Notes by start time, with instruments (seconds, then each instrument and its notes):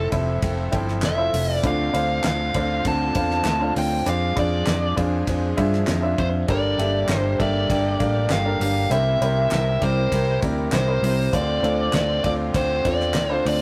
Already playing: grand piano F3 E4 F4 A4 C5 E5, string section F3 A4 E5, steel-string acoustic guitar A3 C4 E4 A4
0.12 fingered electric bass F1, grand piano F3 E4 A4 C5 E5, steel-string acoustic guitar C4 E4 A4, kick, ride
0.42 fingered electric bass F1, steel-string acoustic guitar F3 A3 C4 E4 A4, kick, ride
0.72 fingered electric bass G1, grand piano F3 E4 A4 C5 G5, steel-string acoustic guitar E4 A4, kick, ride
0.76 steel-string acoustic guitar C4
0.88 snare
1.02 fingered electric bass F1, steel-string acoustic guitar A3 C4 E4 A4, lead electric guitar E5, snare, clap, ride
1.17 grand piano E4 F4 A4 C5 E5
1.33 fingered electric bass F1, steel-string acoustic guitar C4 E4 A4, open hi-hat, ride
1.52 lead electric guitar D5
1.63 fingered electric bass D2, grand piano D3 D4 F4 A4 C5 D5, string section D3 C4 F4, steel-string acoustic guitar D3 A3 C4 F4 C5, lead electric guitar F5, kick, hi-hat pedal, ride
1.93 fingered electric bass D2, grand piano D4 F4 A4 C5 F5, steel-string acoustic guitar F4 C5, ride
1.97 steel-string acoustic guitar C4
2.23 fingered electric bass D2, steel-string acoustic guitar A3 C4 F4, lead electric guitar F5, snare, clap, ride
2.28 steel-string acoustic guitar C5
2.54 fingered electric bass D2, steel-string acoustic guitar C4 F4 C5, grand piano D4 F4 A4 C5 F5, kick, ride
2.85 fingered electric bass D2, steel-string acoustic guitar D3 A3 C4 F4 C5, lead electric guitar A5, kick, ride
3.15 fingered electric bass E2, steel-string acoustic guitar C4 F4 C5, grand piano D4 F4 A4 C5 F5, kick, ride
3.30 snare
3.44 fingered electric bass D2, steel-string acoustic guitar A3 C4 F4, snare, clap, ride
3.49 steel-string acoustic guitar C5
3.60 grand piano D4 F4 A4 C5 F5
3.76 fingered electric bass D2, steel-string acoustic guitar C4 F4 C5, lead electric guitar G5, open hi-hat, ride
4.06 fingered electric bass F2, string section F3 D4 G#4, steel-string acoustic guitar F3 G#3 D4 F4 C5, grand piano D4 F4 G#4 C5 D5, lead electric guitar F5, hi-hat pedal, ride
4.36 fingered electric bass F2, grand piano D4 F4 G#4 C5 D5, steel-string acoustic guitar D4 F4 C5, lead electric guitar D5, kick, ride
4.66 fingered electric bass F2, steel-string acoustic guitar G#3 D4 F4 C5, snare, clap, ride
4.96 fingered electric bass F2, grand piano D4 F4 G#4 C5 D5, steel-string acoustic guitar D4 F4 C5, kick, ride
5.27 fingered electric bass F2, steel-string acoustic guitar F3 G#3 D4 F4 C5, kick, ride
5.57 fingered electric bass G2, grand piano D4 F4 G#4 C5 E5, steel-string acoustic guitar D4 F4 C5, kick, ride
5.73 snare
5.87 fingered electric bass F2, steel-string acoustic guitar G#3 D4 F4 C5, snare, clap, ride
6.02 grand piano D4 F4 G#4 C5 E5
6.18 fingered electric bass F2, steel-string acoustic guitar D4 F4 C5, lead electric guitar C5, kick, ride
6.48 fingered electric bass G1, grand piano G2 D4 G4 A4 A#4 D5, steel-string acoustic guitar G3 A#3 D4 G4 A4, string section G3 A#3 G4, lead electric guitar D5, kick, ride
6.78 fingered electric bass G1, grand piano A#3 D4 G4 A4 E5, steel-string acoustic guitar D4 G4 A4, ride
7.08 fingered electric bass G1, steel-string acoustic guitar A#3 D4 G4 A4, snare, clap, ride
7.16 lead electric guitar C5
7.39 fingered electric bass G1, grand piano A#3 D4 G4 A4 E5, steel-string acoustic guitar D4 G4 A4, lead electric guitar D5, kick, ride
7.69 fingered electric bass G1, steel-string acoustic guitar G3 A#3 D4 G4 A4, kick, ride
7.99 fingered electric bass A1, grand piano A#3 D4 G4 A4 F5, steel-string acoustic guitar D4 G4 A4, kick, ride
8.29 fingered electric bass G1, steel-string acoustic guitar A#3 D4 G4 A4, lead electric guitar F5, snare, clap, ride
8.45 grand piano D4 G4 A4 A#4 F5
8.60 fingered electric bass G1, steel-string acoustic guitar D4 G4 A4, lead electric guitar F5, open hi-hat, ride
8.90 fingered electric bass C2, steel-string acoustic guitar C3 E3 G3 C4 E4 A#4, grand piano C3 C4 E4 G4 A#4 C5, string section C3 E4, lead electric guitar E5, hi-hat pedal, ride
9.20 fingered electric bass C2, steel-string acoustic guitar G3 C4 E4 A#4, grand piano C4 E4 G4 A#4 C5, ride
9.50 fingered electric bass C2, steel-string acoustic guitar G3 C4 E4 A#4, lead electric guitar E5, snare, clap, ride
9.81 fingered electric bass C2, steel-string acoustic guitar G3 C4 E4 A#4, grand piano C4 E4 G4 A#4 D5, lead electric guitar C5, kick, ride
10.11 fingered electric bass C2, steel-string acoustic guitar C3 E3 G3 C4 E4 A#4, kick, ride
10.42 fingered electric bass D2, steel-string acoustic guitar G3 C4 E4 A#4, grand piano C4 E4 G4 A#4 D5, kick, ride
10.72 fingered electric bass C2, steel-string acoustic guitar G3 C4 E4 A#4, lead electric guitar C5, snare, clap, ride
10.88 grand piano C4 E4 G4 A#4 C5
11.02 fingered electric bass C2, steel-string acoustic guitar G3 C4 E4 A#4, open hi-hat, ride
11.33 fingered electric bass D2, grand piano D3 C4 D4 F4 A4 C5, steel-string acoustic guitar D3 A3 C4 F4 C5, string section D3 C4 F4, lead electric guitar D5, kick, hi-hat pedal, ride
11.63 fingered electric bass D2, grand piano C4 D4 F4 A4 D5, steel-string acoustic guitar C4 F4 C5, ride
11.93 fingered electric bass D2, steel-string acoustic guitar A3 C4 F4 C5, lead electric guitar D5, snare, clap, ride
12.23 fingered electric bass D2, grand piano C4 D4 F4 A4 D5, steel-string acoustic guitar C4 F4 C5, lead electric guitar D5, kick, ride
12.53 fingered electric bass D2, steel-string acoustic guitar D3 A3 C4 F4 C5, lead electric guitar C5, kick, ride
12.84 fingered electric bass E2, grand piano C4 D4 F4 A4 D5, steel-string acoustic guitar C4 F4 C5, lead electric guitar D5, kick, ride
13.00 snare
13.14 fingered electric bass D2, steel-string acoustic guitar A3 C4 F4 C5, snare, clap, ride
13.29 grand piano C4 D4 F4 A4 C5, lead electric guitar C5
13.44 fingered electric bass D2, steel-string acoustic guitar C4 F4 C5, lead electric guitar D5, open hi-hat, ride